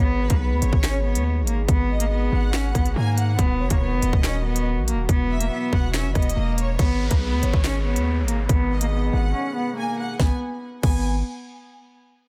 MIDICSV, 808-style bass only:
0, 0, Header, 1, 2, 480
1, 0, Start_track
1, 0, Key_signature, 5, "minor"
1, 0, Tempo, 425532
1, 1901, Time_signature, 4, 2, 24, 8
1, 13854, End_track
2, 0, Start_track
2, 0, Title_t, "808-style bass"
2, 0, Program_c, 0, 38
2, 0, Note_on_c, 0, 32, 112
2, 326, Note_off_c, 0, 32, 0
2, 341, Note_on_c, 0, 35, 104
2, 581, Note_on_c, 0, 39, 99
2, 598, Note_off_c, 0, 35, 0
2, 695, Note_off_c, 0, 39, 0
2, 700, Note_on_c, 0, 32, 106
2, 813, Note_off_c, 0, 32, 0
2, 820, Note_on_c, 0, 32, 108
2, 1300, Note_on_c, 0, 39, 97
2, 1317, Note_off_c, 0, 32, 0
2, 1600, Note_on_c, 0, 32, 105
2, 1617, Note_off_c, 0, 39, 0
2, 1885, Note_off_c, 0, 32, 0
2, 1901, Note_on_c, 0, 32, 112
2, 2592, Note_off_c, 0, 32, 0
2, 2621, Note_on_c, 0, 32, 108
2, 3081, Note_off_c, 0, 32, 0
2, 3102, Note_on_c, 0, 32, 106
2, 3332, Note_off_c, 0, 32, 0
2, 3341, Note_on_c, 0, 44, 109
2, 3801, Note_off_c, 0, 44, 0
2, 3821, Note_on_c, 0, 27, 104
2, 4061, Note_on_c, 0, 30, 105
2, 4078, Note_off_c, 0, 27, 0
2, 4175, Note_off_c, 0, 30, 0
2, 4181, Note_on_c, 0, 27, 104
2, 4420, Note_on_c, 0, 30, 97
2, 4437, Note_off_c, 0, 27, 0
2, 4534, Note_off_c, 0, 30, 0
2, 4540, Note_on_c, 0, 27, 106
2, 4653, Note_off_c, 0, 27, 0
2, 4660, Note_on_c, 0, 27, 107
2, 5381, Note_on_c, 0, 34, 97
2, 5398, Note_off_c, 0, 27, 0
2, 5561, Note_on_c, 0, 27, 97
2, 5578, Note_off_c, 0, 34, 0
2, 5732, Note_off_c, 0, 27, 0
2, 5741, Note_on_c, 0, 28, 113
2, 6201, Note_off_c, 0, 28, 0
2, 6460, Note_on_c, 0, 28, 114
2, 6821, Note_on_c, 0, 30, 98
2, 6838, Note_off_c, 0, 28, 0
2, 6935, Note_off_c, 0, 30, 0
2, 6941, Note_on_c, 0, 28, 104
2, 7171, Note_off_c, 0, 28, 0
2, 7181, Note_on_c, 0, 28, 108
2, 7642, Note_off_c, 0, 28, 0
2, 7661, Note_on_c, 0, 32, 112
2, 8006, Note_off_c, 0, 32, 0
2, 8021, Note_on_c, 0, 35, 101
2, 8260, Note_on_c, 0, 39, 96
2, 8277, Note_off_c, 0, 35, 0
2, 8374, Note_off_c, 0, 39, 0
2, 8380, Note_on_c, 0, 32, 101
2, 8493, Note_off_c, 0, 32, 0
2, 8500, Note_on_c, 0, 32, 107
2, 8981, Note_on_c, 0, 39, 100
2, 8997, Note_off_c, 0, 32, 0
2, 9280, Note_on_c, 0, 32, 103
2, 9297, Note_off_c, 0, 39, 0
2, 9565, Note_off_c, 0, 32, 0
2, 9580, Note_on_c, 0, 32, 113
2, 10272, Note_off_c, 0, 32, 0
2, 10301, Note_on_c, 0, 32, 110
2, 10531, Note_off_c, 0, 32, 0
2, 11501, Note_on_c, 0, 32, 110
2, 11635, Note_off_c, 0, 32, 0
2, 12221, Note_on_c, 0, 32, 111
2, 12667, Note_off_c, 0, 32, 0
2, 13854, End_track
0, 0, End_of_file